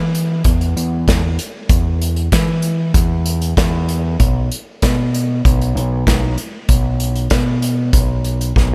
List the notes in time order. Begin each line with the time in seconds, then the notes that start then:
Already playing: E3
0.15 closed hi-hat
0.44 E2, kick, closed hi-hat
0.61 closed hi-hat
0.76 E2, closed hi-hat
1.08 E2, kick, snare, closed hi-hat
1.39 closed hi-hat
1.69 E2, kick, closed hi-hat
2.02 closed hi-hat
2.16 closed hi-hat
2.32 E3, kick, snare, closed hi-hat
2.62 closed hi-hat
2.94 E2, kick, closed hi-hat
3.26 closed hi-hat
3.42 closed hi-hat
3.57 E2, kick, snare, closed hi-hat
3.89 closed hi-hat
4.19 B1, kick, closed hi-hat
4.52 closed hi-hat
4.82 B2, kick, snare, closed hi-hat
5.14 closed hi-hat
5.45 B1, kick, closed hi-hat
5.61 closed hi-hat
5.75 B1, closed hi-hat
6.07 B1, kick, snare, closed hi-hat
6.38 closed hi-hat
6.69 B1, kick, closed hi-hat
7.00 closed hi-hat
7.16 closed hi-hat
7.30 B2, kick, snare, closed hi-hat
7.62 closed hi-hat
7.93 B1, kick, closed hi-hat
8.24 closed hi-hat
8.41 closed hi-hat
8.56 B1, kick, snare